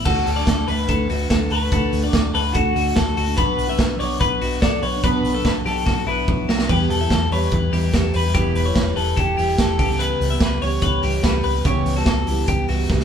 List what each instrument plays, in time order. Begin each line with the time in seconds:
0.05 fingered electric bass D2, steel-string acoustic guitar D3 A3 D4 F#4, clean electric guitar F#4 A4, kick, crash
0.26 fingered electric bass D2, clean electric guitar A4, open hi-hat
0.36 steel-string acoustic guitar A3 D4 F#4, clean electric guitar D5
0.47 fingered electric bass D2, clean electric guitar A4, kick, snare, hi-hat pedal, ride
0.68 fingered electric bass D2, steel-string acoustic guitar D3 A3 D4 F#4, clean electric guitar B4, open hi-hat
0.88 fingered electric bass D2, clean electric guitar A4, kick, hi-hat pedal, ride
1.09 fingered electric bass D2, steel-string acoustic guitar D3 A3 D4 F#4, clean electric guitar F#4, open hi-hat
1.30 fingered electric bass D2, steel-string acoustic guitar D3 A3 D4 F#4, clean electric guitar A4, kick, snare, hi-hat pedal, ride
1.50 fingered electric bass D2, clean electric guitar B4, open hi-hat
1.60 steel-string acoustic guitar A3 D4 F#4
1.71 fingered electric bass D2, steel-string acoustic guitar D3 A3 D4 F#4, clean electric guitar A4, kick, hi-hat pedal, ride
1.93 fingered electric bass D2, open hi-hat
2.03 steel-string acoustic guitar A3 D4 F#4, clean electric guitar D5
2.13 fingered electric bass D2, clean electric guitar A4, kick, snare, hi-hat pedal, ride
2.34 fingered electric bass D2, steel-string acoustic guitar D3 A3 D4 F#4, clean electric guitar A4 B4, open hi-hat
2.53 fingered electric bass D2, clean electric guitar F#4 A4, kick, hi-hat pedal, ride
2.75 fingered electric bass D2, steel-string acoustic guitar D3 A3 D4 F#4, clean electric guitar F#4, open hi-hat
2.96 fingered electric bass D2, steel-string acoustic guitar D3 A3 D4 F#4, clean electric guitar A4, kick, snare, hi-hat pedal, ride
3.17 fingered electric bass D2, clean electric guitar F#4, open hi-hat
3.26 steel-string acoustic guitar A3 D4 F#4
3.36 fingered electric bass B1, steel-string acoustic guitar B2 F#3 B3 D4 F#4, clean electric guitar B4, kick, hi-hat pedal, ride
3.58 fingered electric bass B1, open hi-hat
3.67 steel-string acoustic guitar B3 D4 F#4, clean electric guitar E5
3.79 fingered electric bass B1, kick, snare, hi-hat pedal, ride
3.99 fingered electric bass B1, steel-string acoustic guitar F#3 B3 D4 F#4, clean electric guitar C#5 D5, open hi-hat
4.20 fingered electric bass B1, clean electric guitar B4, kick, hi-hat pedal, ride
4.41 fingered electric bass B1, steel-string acoustic guitar F#3 B3 D4 F#4, clean electric guitar F#4, open hi-hat
4.62 fingered electric bass B1, steel-string acoustic guitar F#3 B3 D4 F#4, clean electric guitar A4 D5, kick, snare, hi-hat pedal, ride
4.83 fingered electric bass B1, clean electric guitar B4 C#5, open hi-hat
4.93 steel-string acoustic guitar B3 D4 F#4
5.04 fingered electric bass B1, steel-string acoustic guitar B2 F#3 B3 D4 F#4, clean electric guitar B4, kick, hi-hat pedal, ride
5.23 fingered electric bass B1, open hi-hat
5.34 steel-string acoustic guitar B3 D4 F#4, clean electric guitar A4
5.45 fingered electric bass B1, clean electric guitar B4, kick, snare, hi-hat pedal, ride
5.65 fingered electric bass B1, steel-string acoustic guitar F#3 B3 D4 F#4, clean electric guitar G4 A4, open hi-hat
5.86 fingered electric bass B1, clean electric guitar F#4, kick, snare
6.06 fingered electric bass B1, steel-string acoustic guitar F#3 B3 D4 F#4, clean electric guitar E4 B4
6.27 fingered electric bass B1, steel-string acoustic guitar F#3 B3 D4 F#4, kick
6.48 fingered electric bass B1, clean electric guitar F#4, snare
6.59 steel-string acoustic guitar B3 D4 F#4, snare
6.68 steel-string acoustic guitar E2 B2 E3 G3 E4 G4, fingered electric bass E2, clean electric guitar G4 B4, kick, splash
6.89 fingered electric bass E2, clean electric guitar A4, open hi-hat
7.00 steel-string acoustic guitar E3 G3 E4 G4, clean electric guitar E5
7.10 fingered electric bass E2, clean electric guitar A4, kick, snare, hi-hat pedal, ride
7.31 fingered electric bass E2, steel-string acoustic guitar E3 G3 E4 G4, clean electric guitar B4 C#5, open hi-hat
7.51 fingered electric bass E2, clean electric guitar B4, kick, hi-hat pedal, ride
7.72 fingered electric bass E2, steel-string acoustic guitar E3 G3 E4 G4, clean electric guitar G4, open hi-hat
7.92 fingered electric bass E2, steel-string acoustic guitar E3 G3 E4 G4, clean electric guitar A4, kick, snare, hi-hat pedal, ride
8.14 fingered electric bass E2, clean electric guitar B4, open hi-hat
8.24 steel-string acoustic guitar E3 G3 E4 G4
8.34 fingered electric bass E1, steel-string acoustic guitar E2 B2 E3 G3 E4 G4, clean electric guitar G4, kick, hi-hat pedal, ride
8.55 fingered electric bass E1, clean electric guitar B4, open hi-hat
8.64 steel-string acoustic guitar E3 G3 E4 G4, clean electric guitar C#5
8.75 fingered electric bass E1, kick, snare, hi-hat pedal, ride
8.96 fingered electric bass E1, steel-string acoustic guitar E3 G3 E4 G4, clean electric guitar A4 B4, open hi-hat
9.17 fingered electric bass E1, clean electric guitar G4 A4, kick, hi-hat pedal, ride
9.36 fingered electric bass E1, steel-string acoustic guitar E3 G3 E4 G4, clean electric guitar G4, open hi-hat
9.58 fingered electric bass E1, steel-string acoustic guitar E3 G3 E4 G4, clean electric guitar A4, kick, snare, hi-hat pedal, ride
9.79 fingered electric bass C#2, steel-string acoustic guitar C#3 E3 G3 B3 G4, clean electric guitar G4, kick, open hi-hat
9.99 clean electric guitar B4, hi-hat pedal, ride
10.21 fingered electric bass C#2, open hi-hat
10.30 steel-string acoustic guitar G3 B3 G4, clean electric guitar E5
10.40 fingered electric bass C#2, clean electric guitar B4, kick, snare, hi-hat pedal, ride
10.61 fingered electric bass C#2, steel-string acoustic guitar E3 G3 B3 G4, clean electric guitar C#5, open hi-hat
10.82 fingered electric bass C#2, clean electric guitar B4, kick, hi-hat pedal, ride
11.03 fingered electric bass C#2, steel-string acoustic guitar E3 G3 B3 G4, clean electric guitar G4, open hi-hat
11.23 fingered electric bass C#2, steel-string acoustic guitar E3 G3 B3 G4, clean electric guitar A4 B4, kick, snare, hi-hat pedal, ride
11.43 fingered electric bass C#2, clean electric guitar B4, open hi-hat
11.54 steel-string acoustic guitar G3 B3 G4
11.64 fingered electric bass C#2, steel-string acoustic guitar C#3 E3 G3 B3 G4, clean electric guitar G4 C#5, kick, hi-hat pedal, ride
11.86 fingered electric bass C#2, open hi-hat
11.96 steel-string acoustic guitar G3 B3 G4, clean electric guitar F#4 A4
12.06 fingered electric bass C#2, clean electric guitar A4, kick, snare, hi-hat pedal, ride
12.27 fingered electric bass C#2, steel-string acoustic guitar E3 G3 B3 G4, clean electric guitar E4, open hi-hat
12.47 fingered electric bass C#2, clean electric guitar G4, kick, hi-hat pedal, ride
12.68 fingered electric bass C#2, steel-string acoustic guitar E3 G3 B3 G4, clean electric guitar F#4, open hi-hat
12.89 fingered electric bass C#2, steel-string acoustic guitar E3 G3 B3 G4, kick, snare
13.00 snare